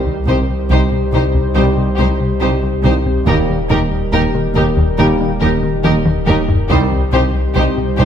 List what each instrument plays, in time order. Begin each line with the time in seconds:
Already playing: sub bass C2, trombone section D#3 G3, ambient pad G3 D#4 G4 C5, french horn section C4 G4
0.06 analog synth bass C2, synth arpeggio sound D#3
0.27 cello section C2, tuba C2, double bass section C2, analog synth bass C2, synth arpeggio sound C4, viola section D#4, violin section G4 C5, taiko low-mid
0.49 analog synth bass C2
0.70 tuba C2, analog synth bass C2, double bass section C2, cello section C2, synth arpeggio sound C3, viola section D#4, violin section G4 C5
0.92 analog synth bass C3, synth arpeggio sound G3, taiko low-mid
1.12 tuba C2, double bass section C2, analog synth bass C2, cello section C2, viola section D#4, violin section G4 C5, taiko low-mid
1.34 analog synth bass C2, synth arpeggio sound C3, taiko
1.55 tuba C2, cello section C2, double bass section C2, analog synth bass C3, trombone section D#3 G3, french horn section C4 G4, viola section D#4, violin section G4 C5, taiko low-mid
1.77 analog synth bass C3, synth arpeggio sound G3
1.98 cello section C2, double bass section C2, analog synth bass C2, tuba C2, synth arpeggio sound C3, viola section D#4, violin section G4 C5
2.20 analog synth bass C3, synth arpeggio sound G3
2.41 double bass section C2, tuba C2, cello section C2, analog synth bass C3, synth arpeggio sound G3, viola section D#4, violin section G4 C5
2.63 analog synth bass C2, synth arpeggio sound C3
2.84 cello section C2, tuba C2, analog synth bass C2, double bass section C2, synth arpeggio sound D#3, viola section D#4, violin section G4 C5, taiko low-mid
3.06 analog synth bass C2, synth arpeggio sound C4, taiko low-mid
3.26 sub bass D#1, cello section D#2, tuba D#2, double bass section D#2, analog synth bass D#2, synth arpeggio sound D#3, trombone section D#3 G3, ambient pad G3 D#4 G4 A#4, french horn section A#3 G4, viola section D#4, violin section G4 A#4, taiko
3.49 analog synth bass D#2, synth arpeggio sound G3
3.69 tuba D#2, double bass section D#2, cello section D#2, analog synth bass D#2, viola section D#4, synth arpeggio sound D#4, violin section G4 A#4, taiko low-mid
3.91 analog synth bass D#2
4.12 cello section D#2, analog synth bass D#2, tuba D#2, double bass section D#2, synth arpeggio sound D#3, viola section D#4, violin section G4 A#4
4.34 analog synth bass D#3, synth arpeggio sound A#3, taiko low-mid
4.55 cello section D#2, tuba D#2, double bass section D#2, analog synth bass D#2, viola section D#4, violin section G4 A#4, taiko low-mid
4.77 analog synth bass D#2, synth arpeggio sound D#3, taiko
4.98 double bass section D#2, tuba D#2, cello section D#2, analog synth bass D#3, trombone section D#3 G3, french horn section A#3 G4, viola section D#4, violin section G4 A#4, taiko low-mid
5.20 analog synth bass D#3, synth arpeggio sound A#3
5.41 analog synth bass D#2, tuba D#2, double bass section D#2, cello section D#2, synth arpeggio sound D#3, viola section D#4, violin section G4 A#4
5.63 analog synth bass D#3, synth arpeggio sound A#3
5.84 tuba D#2, double bass section D#2, cello section D#2, analog synth bass D#3, synth arpeggio sound A#3, viola section D#4, violin section G4 A#4, taiko mid
6.06 analog synth bass D#2, synth arpeggio sound D#3, taiko mid
6.26 tuba D#2, double bass section D#2, cello section D#2, analog synth bass D#2, synth arpeggio sound G3, viola section D#4, violin section G4 A#4, taiko mid
6.49 analog synth bass D#2, synth arpeggio sound D#4, taiko low
6.69 analog synth bass C2, tuba C2, double bass section C2, sub bass C2, cello section C2, synth arpeggio sound C3, trombone section D#3 G3, ambient pad G3 D#4 G4 C5, french horn section C4 G4, viola section D#4, violin section G4 C5, taiko
6.91 analog synth bass C2, synth arpeggio sound D#3
7.12 cello section C2, double bass section C2, tuba C2, analog synth bass C2, synth arpeggio sound C4, viola section D#4, violin section G4 C5, taiko low-mid
7.35 analog synth bass C2
7.55 double bass section C2, cello section C2, analog synth bass C2, tuba C2, synth arpeggio sound C3, viola section D#4, violin section G4 C5
7.77 analog synth bass C3, synth arpeggio sound G3, taiko low-mid
7.97 double bass section C2, analog synth bass C2, cello section C2, tuba C2, viola section D#4, violin section G4 C5, taiko low-mid